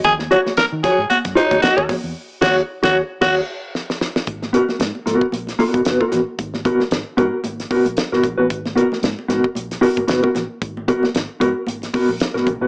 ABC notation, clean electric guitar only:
X:1
M:4/4
L:1/16
Q:"Swing 16ths" 1/4=114
K:Abdor
V:1 name="Clean electric guitar"
z2 [GAd] z3 [GAd] z3 [GAd]2 [GAe] [GAd] z2 | z2 [GAd]2 z [GAd]2 z [GAd]2 z6 | z2 [CGB] z3 [CGB]2 z2 [CGB]2 [CGc] [CGB]2 z | z2 [CGB] z3 [CGB] z3 [CGB] z2 [CGB] z [CGc] |
z2 [CGB] z3 [CGB] z3 [CGB] z [CGc] [CGB] z2 | z2 [CGB] z3 [CGB] z3 [CGB] z2 [CGB] z [CGc] |]